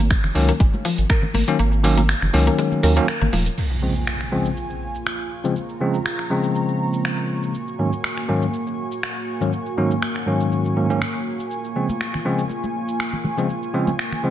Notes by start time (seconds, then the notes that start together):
Already playing: G#1
0.11 finger snap, kick, closed hi-hat, shaker
0.24 F#1, finger snap, low conga, shaker
0.35 C#2 D#3 F#3 A#3 C#4, open hi-hat
0.49 A#3, closed hi-hat, shaker
0.60 F#1 G#3, kick, closed hi-hat, muted conga, shaker
0.73 muted conga, high conga, shaker
0.85 F3, open hi-hat
0.98 G#1, closed hi-hat, shaker
1.10 A#4, finger snap, kick, closed hi-hat, shaker
1.22 muted conga, low conga, shaker
1.34 G#1 A#3, open hi-hat, high conga, low conga
1.48 D#3 F#3 A#3 C#4, closed hi-hat, shaker
1.59 G#1 A#3, closed hi-hat, shaker
1.73 shaker
1.84 D#3 F#3 A#3 C#4, open hi-hat
1.97 A#3, closed hi-hat, muted conga, high conga, shaker
2.09 finger snap, open hi-hat, shaker
2.22 F#1, finger snap, low conga, shaker
2.33 C#2 D#3 F#3 A#3 C#4, open hi-hat, muted conga
2.47 A#3, closed hi-hat, muted conga, shaker
2.59 G#3, closed hi-hat, shaker
2.72 high conga, shaker
2.83 D#2 D#3 F#3 A#3 C#4 A#4, open hi-hat, muted conga
2.96 D#3 F#3 A#3 C#4, closed hi-hat, shaker
3.08 A#4, finger snap, closed hi-hat, shaker
3.21 G#1 A#3, low conga, shaker
3.33 D#1 F3, open hi-hat, high conga
3.46 closed hi-hat, shaker
3.58 A#3 F4 G#5 C#6, crash, impact, shaker
3.71 shaker
3.82 C#3 F3 G#3 C4
3.96 shaker
4.07 finger snap, shaker
4.21 finger snap, shaker
4.32 C#3 F3 G#3 C4
4.45 shaker
4.57 shaker
4.70 shaker
4.95 shaker
5.06 finger snap, shaker
5.20 shaker
5.44 C#3 F3 G#3 C4, shaker
5.56 A#5, shaker
5.69 shaker
5.80 C#3 F3 G#3 C4
5.94 shaker
6.06 finger snap, shaker
6.19 finger snap, shaker
6.30 C#3 F3 G#3 C4
6.44 shaker
6.55 shaker
6.69 shaker
6.93 shaker
7.05 finger snap, shaker
7.18 shaker
7.43 shaker
7.55 F#4 G#5, shaker
7.68 shaker
7.79 G#2 D#3 F#3 A#3 C#4
7.93 shaker
8.04 finger snap, shaker
8.17 finger snap, shaker
8.28 G#2 D#3 F#3 A#3 C#4
8.42 shaker
8.54 shaker
8.67 shaker
8.92 shaker
9.03 finger snap, shaker
9.17 shaker
9.41 G#2 D#3 F#3 A#3 C#4, shaker
9.53 shaker
9.66 shaker
9.77 G#2 D#3 F#3 A#3 C#4
9.91 shaker
10.02 finger snap, shaker
10.16 finger snap, shaker
10.27 G#2 D#3 F#3 A#3 C#4
10.41 shaker
10.52 shaker
10.65 shaker
10.76 G#2 D#3 F#3 A#3 C#4
10.90 G#2 D#3 F#3 A#3 C#4, shaker
11.02 finger snap, shaker
11.15 shaker
11.40 shaker
11.51 F4, shaker
11.64 shaker
11.76 C#3 F3 G#3 C4
11.89 high conga, shaker
12.01 finger snap, shaker
12.14 finger snap, low conga, shaker
12.25 C#3 F3 G#3 C4
12.39 shaker
12.49 muted conga, shaker
12.64 muted conga, high conga, shaker
12.88 shaker
13.00 finger snap, shaker
13.13 muted conga, low conga, shaker
13.24 high conga, low conga
13.38 C#3 F3 G#3 C4, shaker
13.49 shaker
13.63 shaker
13.74 C#3 F3 G#3 C4
13.87 muted conga, high conga, shaker
13.99 finger snap, shaker
14.12 finger snap, low conga, shaker
14.23 C#3 F3 G#3 C4, muted conga